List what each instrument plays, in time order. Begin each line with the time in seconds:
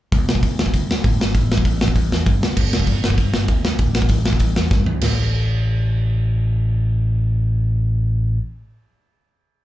0.12 picked electric bass D2, kick, open hi-hat
0.28 picked electric bass B1, snare
0.35 kick
0.43 picked electric bass D2, kick, open hi-hat
0.59 picked electric bass D2, snare
0.66 kick
0.74 picked electric bass D2, kick, open hi-hat
0.90 picked electric bass D2, snare
1.04 picked electric bass A2, kick, open hi-hat
1.20 picked electric bass G#1, snare
1.35 picked electric bass A1, kick, open hi-hat
1.52 snare
1.58 kick
1.65 picked electric bass A1, kick, open hi-hat
1.81 picked electric bass A1, snare
1.88 kick
1.96 picked electric bass A1, kick, open hi-hat
2.11 picked electric bass E2, snare
2.26 picked electric bass G2, kick, open hi-hat
2.42 picked electric bass D2, snare
2.57 picked electric bass G1, kick, crash
2.72 picked electric bass E1, snare
2.80 kick
2.87 picked electric bass G1, kick, open hi-hat
3.02 picked electric bass G1, snare
3.10 kick
3.18 picked electric bass G1, kick, open hi-hat
3.34 picked electric bass G1, snare
3.48 picked electric bass D2, kick, open hi-hat
3.65 picked electric bass D2, snare
3.79 picked electric bass A1, kick, open hi-hat
3.95 snare
4.02 kick
4.09 picked electric bass A1, kick, open hi-hat
4.25 picked electric bass A1, snare
4.33 kick
4.40 picked electric bass A1, kick, open hi-hat
4.56 picked electric bass E2, snare
4.71 picked electric bass G2, kick, snare
4.86 picked electric bass D2, floor tom
5.01 picked electric bass A1, snare, crash